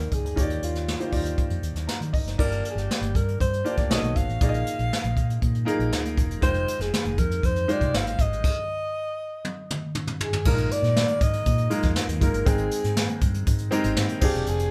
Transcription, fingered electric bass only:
0, 0, Header, 1, 2, 480
1, 0, Start_track
1, 0, Tempo, 503356
1, 357, Time_signature, 4, 2, 24, 8
1, 14026, End_track
2, 0, Start_track
2, 0, Title_t, "Fingered electric bass"
2, 0, Program_c, 0, 33
2, 0, Note_on_c, 0, 39, 78
2, 96, Note_off_c, 0, 39, 0
2, 109, Note_on_c, 0, 37, 80
2, 238, Note_off_c, 0, 37, 0
2, 238, Note_on_c, 0, 38, 69
2, 339, Note_off_c, 0, 38, 0
2, 352, Note_on_c, 0, 39, 105
2, 558, Note_off_c, 0, 39, 0
2, 595, Note_on_c, 0, 39, 76
2, 902, Note_off_c, 0, 39, 0
2, 1072, Note_on_c, 0, 39, 83
2, 1279, Note_off_c, 0, 39, 0
2, 1432, Note_on_c, 0, 41, 80
2, 1537, Note_off_c, 0, 41, 0
2, 1551, Note_on_c, 0, 39, 80
2, 1657, Note_off_c, 0, 39, 0
2, 1670, Note_on_c, 0, 39, 95
2, 1776, Note_off_c, 0, 39, 0
2, 1913, Note_on_c, 0, 51, 93
2, 2018, Note_off_c, 0, 51, 0
2, 2141, Note_on_c, 0, 30, 68
2, 2252, Note_off_c, 0, 30, 0
2, 2280, Note_on_c, 0, 31, 100
2, 2484, Note_off_c, 0, 31, 0
2, 2626, Note_on_c, 0, 31, 94
2, 2735, Note_off_c, 0, 31, 0
2, 2871, Note_on_c, 0, 31, 93
2, 2978, Note_off_c, 0, 31, 0
2, 2999, Note_on_c, 0, 43, 83
2, 3205, Note_off_c, 0, 43, 0
2, 3243, Note_on_c, 0, 43, 88
2, 3447, Note_off_c, 0, 43, 0
2, 3602, Note_on_c, 0, 38, 85
2, 3705, Note_off_c, 0, 38, 0
2, 3718, Note_on_c, 0, 35, 86
2, 3822, Note_off_c, 0, 35, 0
2, 3835, Note_on_c, 0, 35, 93
2, 3941, Note_off_c, 0, 35, 0
2, 3961, Note_on_c, 0, 32, 82
2, 4064, Note_off_c, 0, 32, 0
2, 4078, Note_on_c, 0, 33, 67
2, 4183, Note_off_c, 0, 33, 0
2, 4206, Note_on_c, 0, 34, 91
2, 4410, Note_off_c, 0, 34, 0
2, 4567, Note_on_c, 0, 34, 86
2, 4668, Note_off_c, 0, 34, 0
2, 4804, Note_on_c, 0, 34, 100
2, 4907, Note_off_c, 0, 34, 0
2, 4926, Note_on_c, 0, 46, 83
2, 5130, Note_off_c, 0, 46, 0
2, 5171, Note_on_c, 0, 46, 99
2, 5373, Note_off_c, 0, 46, 0
2, 5522, Note_on_c, 0, 34, 83
2, 5626, Note_off_c, 0, 34, 0
2, 5642, Note_on_c, 0, 38, 76
2, 5884, Note_on_c, 0, 28, 84
2, 5899, Note_off_c, 0, 38, 0
2, 6089, Note_off_c, 0, 28, 0
2, 6120, Note_on_c, 0, 29, 108
2, 6327, Note_off_c, 0, 29, 0
2, 6477, Note_on_c, 0, 29, 95
2, 6583, Note_off_c, 0, 29, 0
2, 6720, Note_on_c, 0, 29, 90
2, 6825, Note_off_c, 0, 29, 0
2, 6845, Note_on_c, 0, 41, 97
2, 7050, Note_off_c, 0, 41, 0
2, 7090, Note_on_c, 0, 41, 108
2, 7292, Note_off_c, 0, 41, 0
2, 7444, Note_on_c, 0, 36, 97
2, 7548, Note_off_c, 0, 36, 0
2, 7562, Note_on_c, 0, 32, 75
2, 7768, Note_off_c, 0, 32, 0
2, 7807, Note_on_c, 0, 32, 83
2, 8011, Note_off_c, 0, 32, 0
2, 9967, Note_on_c, 0, 34, 94
2, 10170, Note_off_c, 0, 34, 0
2, 10321, Note_on_c, 0, 46, 95
2, 10526, Note_off_c, 0, 46, 0
2, 10689, Note_on_c, 0, 44, 103
2, 10891, Note_off_c, 0, 44, 0
2, 10931, Note_on_c, 0, 46, 112
2, 11132, Note_off_c, 0, 46, 0
2, 11283, Note_on_c, 0, 41, 89
2, 11385, Note_off_c, 0, 41, 0
2, 11519, Note_on_c, 0, 39, 94
2, 11623, Note_off_c, 0, 39, 0
2, 11648, Note_on_c, 0, 30, 90
2, 11748, Note_off_c, 0, 30, 0
2, 11762, Note_on_c, 0, 31, 86
2, 11865, Note_off_c, 0, 31, 0
2, 11886, Note_on_c, 0, 32, 115
2, 12089, Note_off_c, 0, 32, 0
2, 12244, Note_on_c, 0, 44, 85
2, 12447, Note_off_c, 0, 44, 0
2, 12601, Note_on_c, 0, 43, 93
2, 12805, Note_off_c, 0, 43, 0
2, 12841, Note_on_c, 0, 44, 114
2, 13045, Note_off_c, 0, 44, 0
2, 13198, Note_on_c, 0, 32, 90
2, 13301, Note_off_c, 0, 32, 0
2, 13314, Note_on_c, 0, 44, 85
2, 13419, Note_off_c, 0, 44, 0
2, 13557, Note_on_c, 0, 29, 94
2, 13661, Note_off_c, 0, 29, 0
2, 13671, Note_on_c, 0, 28, 77
2, 13777, Note_off_c, 0, 28, 0
2, 13798, Note_on_c, 0, 29, 114
2, 14002, Note_off_c, 0, 29, 0
2, 14026, End_track
0, 0, End_of_file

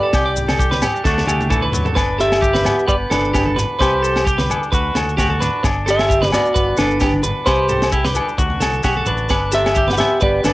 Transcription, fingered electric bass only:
0, 0, Header, 1, 2, 480
1, 0, Start_track
1, 0, Key_signature, 1, "major"
1, 0, Tempo, 458190
1, 144, Time_signature, 4, 2, 24, 8
1, 11032, End_track
2, 0, Start_track
2, 0, Title_t, "Fingered electric bass"
2, 0, Program_c, 0, 33
2, 141, Note_on_c, 0, 36, 92
2, 881, Note_off_c, 0, 36, 0
2, 1099, Note_on_c, 0, 38, 91
2, 1285, Note_off_c, 0, 38, 0
2, 1332, Note_on_c, 0, 38, 85
2, 1891, Note_off_c, 0, 38, 0
2, 2055, Note_on_c, 0, 31, 87
2, 2798, Note_off_c, 0, 31, 0
2, 3021, Note_on_c, 0, 31, 93
2, 3207, Note_off_c, 0, 31, 0
2, 3258, Note_on_c, 0, 31, 75
2, 3815, Note_off_c, 0, 31, 0
2, 3983, Note_on_c, 0, 36, 90
2, 4723, Note_off_c, 0, 36, 0
2, 4948, Note_on_c, 0, 38, 94
2, 5131, Note_off_c, 0, 38, 0
2, 5195, Note_on_c, 0, 38, 80
2, 5745, Note_off_c, 0, 38, 0
2, 5908, Note_on_c, 0, 31, 95
2, 6646, Note_off_c, 0, 31, 0
2, 6869, Note_on_c, 0, 31, 100
2, 7052, Note_off_c, 0, 31, 0
2, 7103, Note_on_c, 0, 31, 89
2, 7658, Note_off_c, 0, 31, 0
2, 7825, Note_on_c, 0, 36, 97
2, 8564, Note_off_c, 0, 36, 0
2, 8784, Note_on_c, 0, 38, 101
2, 8969, Note_off_c, 0, 38, 0
2, 9020, Note_on_c, 0, 36, 73
2, 9238, Note_off_c, 0, 36, 0
2, 9265, Note_on_c, 0, 35, 80
2, 9481, Note_off_c, 0, 35, 0
2, 9493, Note_on_c, 0, 33, 74
2, 9714, Note_off_c, 0, 33, 0
2, 9742, Note_on_c, 0, 31, 82
2, 10482, Note_off_c, 0, 31, 0
2, 10706, Note_on_c, 0, 31, 102
2, 10890, Note_off_c, 0, 31, 0
2, 10936, Note_on_c, 0, 31, 88
2, 11032, Note_off_c, 0, 31, 0
2, 11032, End_track
0, 0, End_of_file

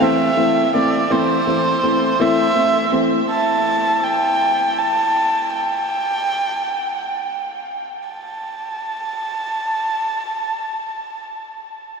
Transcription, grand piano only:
0, 0, Header, 1, 2, 480
1, 0, Start_track
1, 0, Key_signature, 0, "minor"
1, 0, Tempo, 729927
1, 719, Time_signature, 6, 3, 24, 8
1, 2641, Tempo, 759494
1, 3601, Tempo, 803213
1, 4081, Tempo, 843882
1, 4561, Tempo, 896861
1, 5041, Tempo, 925926
1, 7074, End_track
2, 0, Start_track
2, 0, Title_t, "Grand piano"
2, 0, Program_c, 0, 0
2, 0, Note_on_c, 0, 52, 78
2, 1, Note_on_c, 0, 57, 65
2, 4, Note_on_c, 0, 60, 85
2, 172, Note_off_c, 0, 52, 0
2, 172, Note_off_c, 0, 57, 0
2, 174, Note_off_c, 0, 60, 0
2, 241, Note_on_c, 0, 52, 56
2, 244, Note_on_c, 0, 57, 53
2, 247, Note_on_c, 0, 60, 62
2, 412, Note_off_c, 0, 52, 0
2, 413, Note_off_c, 0, 57, 0
2, 415, Note_off_c, 0, 60, 0
2, 488, Note_on_c, 0, 52, 59
2, 488, Note_on_c, 0, 57, 54
2, 492, Note_on_c, 0, 60, 64
2, 655, Note_off_c, 0, 52, 0
2, 655, Note_off_c, 0, 57, 0
2, 657, Note_off_c, 0, 60, 0
2, 725, Note_on_c, 0, 52, 69
2, 727, Note_on_c, 0, 57, 66
2, 730, Note_on_c, 0, 60, 74
2, 893, Note_off_c, 0, 52, 0
2, 894, Note_off_c, 0, 57, 0
2, 896, Note_off_c, 0, 60, 0
2, 967, Note_on_c, 0, 52, 59
2, 967, Note_on_c, 0, 57, 53
2, 968, Note_on_c, 0, 60, 67
2, 1134, Note_off_c, 0, 52, 0
2, 1134, Note_off_c, 0, 57, 0
2, 1135, Note_off_c, 0, 60, 0
2, 1206, Note_on_c, 0, 52, 53
2, 1206, Note_on_c, 0, 57, 52
2, 1208, Note_on_c, 0, 60, 60
2, 1373, Note_off_c, 0, 52, 0
2, 1374, Note_off_c, 0, 57, 0
2, 1375, Note_off_c, 0, 60, 0
2, 1442, Note_on_c, 0, 52, 76
2, 1446, Note_on_c, 0, 57, 67
2, 1448, Note_on_c, 0, 60, 76
2, 1611, Note_off_c, 0, 52, 0
2, 1613, Note_off_c, 0, 57, 0
2, 1614, Note_off_c, 0, 60, 0
2, 1680, Note_on_c, 0, 57, 47
2, 1686, Note_on_c, 0, 60, 56
2, 1850, Note_off_c, 0, 57, 0
2, 1853, Note_off_c, 0, 60, 0
2, 1917, Note_on_c, 0, 52, 55
2, 1920, Note_on_c, 0, 57, 49
2, 1920, Note_on_c, 0, 60, 63
2, 2089, Note_off_c, 0, 52, 0
2, 2090, Note_off_c, 0, 57, 0
2, 2090, Note_off_c, 0, 60, 0
2, 7074, End_track
0, 0, End_of_file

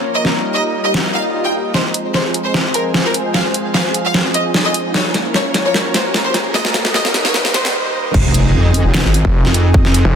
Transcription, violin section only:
0, 0, Header, 1, 2, 480
1, 0, Start_track
1, 0, Key_signature, -4, "minor"
1, 0, Tempo, 400000
1, 173, Time_signature, 4, 2, 24, 8
1, 12187, End_track
2, 0, Start_track
2, 0, Title_t, "Violin section"
2, 0, Program_c, 0, 48
2, 174, Note_on_c, 0, 75, 93
2, 270, Note_off_c, 0, 75, 0
2, 652, Note_on_c, 0, 75, 89
2, 748, Note_off_c, 0, 75, 0
2, 1019, Note_on_c, 0, 75, 90
2, 1115, Note_off_c, 0, 75, 0
2, 1373, Note_on_c, 0, 77, 91
2, 1469, Note_off_c, 0, 77, 0
2, 1739, Note_on_c, 0, 79, 87
2, 1835, Note_off_c, 0, 79, 0
2, 2092, Note_on_c, 0, 72, 92
2, 2188, Note_off_c, 0, 72, 0
2, 2571, Note_on_c, 0, 72, 91
2, 2667, Note_off_c, 0, 72, 0
2, 2939, Note_on_c, 0, 72, 92
2, 3035, Note_off_c, 0, 72, 0
2, 3293, Note_on_c, 0, 70, 90
2, 3389, Note_off_c, 0, 70, 0
2, 3660, Note_on_c, 0, 70, 90
2, 3756, Note_off_c, 0, 70, 0
2, 4013, Note_on_c, 0, 77, 92
2, 4109, Note_off_c, 0, 77, 0
2, 4494, Note_on_c, 0, 77, 93
2, 4590, Note_off_c, 0, 77, 0
2, 4861, Note_on_c, 0, 77, 94
2, 4957, Note_off_c, 0, 77, 0
2, 5214, Note_on_c, 0, 75, 90
2, 5310, Note_off_c, 0, 75, 0
2, 5581, Note_on_c, 0, 75, 94
2, 5677, Note_off_c, 0, 75, 0
2, 5933, Note_on_c, 0, 73, 95
2, 6029, Note_off_c, 0, 73, 0
2, 6411, Note_on_c, 0, 73, 97
2, 6507, Note_off_c, 0, 73, 0
2, 6779, Note_on_c, 0, 73, 92
2, 6875, Note_off_c, 0, 73, 0
2, 7133, Note_on_c, 0, 72, 94
2, 7229, Note_off_c, 0, 72, 0
2, 7498, Note_on_c, 0, 72, 91
2, 7594, Note_off_c, 0, 72, 0
2, 7852, Note_on_c, 0, 75, 101
2, 7948, Note_off_c, 0, 75, 0
2, 8332, Note_on_c, 0, 75, 94
2, 8428, Note_off_c, 0, 75, 0
2, 8698, Note_on_c, 0, 73, 97
2, 8794, Note_off_c, 0, 73, 0
2, 9052, Note_on_c, 0, 72, 97
2, 9148, Note_off_c, 0, 72, 0
2, 12187, End_track
0, 0, End_of_file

